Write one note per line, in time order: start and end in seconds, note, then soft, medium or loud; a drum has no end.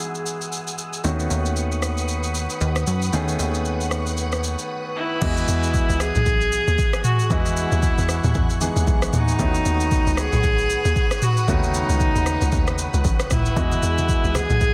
0.00 1.00 E3 medium
0.00 1.00 G#3 medium
0.00 1.01 B3 medium
0.00 1.01 D#4 medium
0.00 1.01 F#4 medium
0.00 0.75 G#4 loud
0.00 1.00 G#4 medium
0.00 1.00 F#5 medium
0.00 5.18 D#6 medium
0.00 1.00 E6 medium
0.00 downlifter medium
0.00 shaker medium
0.15 shaker soft
0.26 shaker medium
0.42 shaker medium
0.53 shaker medium
0.68 shaker medium
0.78 shaker loud
0.93 shaker medium
1.04 1.28 D#2 medium
1.04 3.09 D#3 medium
1.04 3.09 A3 medium
1.04 3.09 B3 medium
1.04 3.10 C#4 medium
1.04 3.10 F#4 medium
1.04 5.18 B4 medium
1.04 5.18 F#5 medium
1.04 5.18 C#6 medium
1.04 shaker medium
1.20 shaker medium
1.31 2.47 D#2 medium
1.31 shaker loud
1.46 shaker medium
1.57 shaker medium
1.72 shaker soft
1.82 cross-stick medium
1.82 shaker medium
1.98 shaker soft
2.08 shaker medium
2.23 shaker soft
2.35 shaker medium
2.50 shaker medium
2.61 2.84 D#2 loud
2.61 shaker medium
2.76 cross-stick loud
2.76 shaker medium
2.87 3.10 F#2 medium
2.87 shaker loud
3.02 shaker medium
3.12 3.36 D#2 loud
3.12 5.18 D#3 medium
3.12 5.18 A3 medium
3.12 5.18 B3 medium
3.12 5.18 C#4 medium
3.12 5.19 G#4 medium
3.12 shaker medium
3.28 shaker medium
3.39 4.56 D#2 medium
3.39 shaker medium
3.54 shaker medium
3.65 shaker medium
3.81 shaker soft
3.91 cross-stick medium
3.91 shaker medium
4.07 shaker soft
4.17 shaker medium
4.32 cross-stick medium
4.32 shaker soft
4.44 shaker medium
4.59 shaker medium
4.96 6.02 E4 loud
5.21 5.44 E2 loud
5.21 7.26 E3 medium
5.21 7.27 G#3 medium
5.21 7.27 B3 medium
5.21 7.27 F#4 medium
5.21 9.35 G#4 medium
5.21 7.27 D#5 medium
5.21 9.35 F#5 medium
5.21 7.28 D#6 medium
5.21 kick loud
5.21 crash loud
5.21 shaker medium
5.37 shaker medium
5.48 5.83 E2 loud
5.48 shaker loud
5.63 shaker medium
5.74 kick medium
5.74 shaker medium
5.89 6.11 C#2 medium
5.89 shaker medium
6.00 7.04 G#4 loud
6.00 cross-stick medium
6.00 shaker medium
6.15 6.25 B1 medium
6.15 mid tom medium
6.15 shaker medium
6.26 6.61 B1 loud
6.26 kick loud
6.26 shaker medium
6.41 shaker medium
6.52 shaker medium
6.67 6.77 D#2 medium
6.67 shaker medium
6.78 kick loud
6.78 shaker medium
6.93 cross-stick loud
6.93 shaker medium
7.04 7.32 F#4 loud
7.04 mid tom loud
7.04 shaker loud
7.19 shaker medium
7.30 7.66 E2 loud
7.30 8.58 E3 medium
7.30 8.58 G#3 medium
7.30 8.59 B3 medium
7.30 8.87 E4 loud
7.30 8.59 F#4 medium
7.30 8.59 D#5 medium
7.30 13.53 C#6 medium
7.30 kick loud
7.30 shaker medium
7.46 shaker medium
7.57 shaker loud
7.72 7.94 D#2 loud
7.72 shaker medium
7.83 kick loud
7.83 shaker medium
7.98 8.20 E2 medium
7.98 shaker medium
8.09 cross-stick medium
8.09 shaker medium
8.24 8.33 D#2 loud
8.24 mid tom medium
8.24 shaker medium
8.35 8.70 E2 loud
8.35 kick loud
8.35 shaker medium
8.50 shaker medium
8.61 9.39 E3 medium
8.61 9.39 G#3 medium
8.61 9.38 B3 medium
8.61 9.40 D#4 medium
8.61 9.40 G#4 medium
8.61 shaker medium
8.76 8.86 D#2 medium
8.76 shaker medium
8.87 9.09 B1 loud
8.87 kick loud
8.87 shaker medium
9.02 cross-stick loud
9.02 shaker medium
9.13 9.35 D#2 medium
9.13 10.20 D#4 loud
9.13 mid tom loud
9.13 shaker loud
9.28 shaker medium
9.39 9.62 D#2 loud
9.39 11.44 D#3 medium
9.39 11.44 A3 medium
9.39 11.44 B3 medium
9.39 11.45 C#4 medium
9.39 9.47 E4 medium
9.39 13.53 B4 medium
9.39 13.53 F#5 medium
9.39 13.53 D#6 medium
9.39 kick loud
9.39 shaker medium
9.47 11.48 F#4 medium
9.55 shaker medium
9.66 10.01 D#2 loud
9.66 shaker loud
9.80 shaker medium
9.91 kick loud
9.91 shaker medium
10.07 10.29 C#2 medium
10.07 shaker medium
10.17 11.24 G#4 loud
10.17 cross-stick medium
10.17 shaker medium
10.33 10.42 B1 loud
10.33 mid tom medium
10.33 shaker medium
10.43 10.79 B1 loud
10.43 kick loud
10.43 shaker medium
10.58 shaker soft
10.70 shaker loud
10.85 10.94 D#2 loud
10.85 shaker medium
10.96 kick loud
10.96 shaker medium
11.11 cross-stick loud
11.11 shaker medium
11.22 11.50 F#4 loud
11.22 mid tom loud
11.22 shaker loud
11.37 shaker medium
11.47 11.83 D#2 loud
11.47 11.55 C#3 medium
11.47 13.53 A3 medium
11.47 13.53 B3 medium
11.47 13.53 C#4 medium
11.47 13.05 D#4 loud
11.47 13.53 F#4 medium
11.47 kick loud
11.47 shaker medium
11.54 13.56 D#3 medium
11.63 shaker medium
11.74 shaker loud
11.89 12.11 C#2 medium
11.89 shaker medium
12.00 kick medium
12.00 shaker medium
12.15 12.38 D#2 medium
12.15 shaker medium
12.26 cross-stick medium
12.26 shaker medium
12.41 12.51 C#2 loud
12.41 shaker medium
12.52 12.88 D#2 loud
12.52 kick loud
12.52 shaker medium
12.67 cross-stick medium
12.67 shaker medium
12.78 shaker loud
12.94 13.03 C#2 medium
12.94 shaker medium
13.05 13.27 A1 loud
13.05 kick loud
13.05 shaker medium
13.20 cross-stick loud
13.20 shaker medium
13.30 13.53 C#2 medium
13.30 14.37 E4 loud
13.30 kick loud
13.30 cross-stick loud
13.30 mid tom loud
13.30 shaker loud
13.45 shaker medium
13.56 13.79 E2 loud
13.56 14.74 E3 medium
13.56 14.74 G#3 medium
13.56 14.74 B3 medium
13.56 14.74 F#4 medium
13.56 14.74 G#4 medium
13.56 14.74 D#5 medium
13.56 14.74 F#5 medium
13.56 14.74 D#6 medium
13.56 kick loud
13.56 low conga medium
13.56 shaker medium
13.72 high conga medium
13.72 shaker medium
13.83 14.18 E2 loud
13.83 shaker loud
13.98 high conga medium
13.98 shaker medium
14.09 kick loud
14.09 shaker medium
14.24 14.46 C#2 medium
14.24 shaker medium
14.35 14.74 G#4 loud
14.35 cross-stick medium
14.35 high conga medium
14.35 low conga medium
14.35 shaker medium
14.50 14.59 B1 loud
14.50 mid tom medium
14.50 shaker medium
14.61 14.74 B1 loud
14.61 kick loud
14.61 shaker medium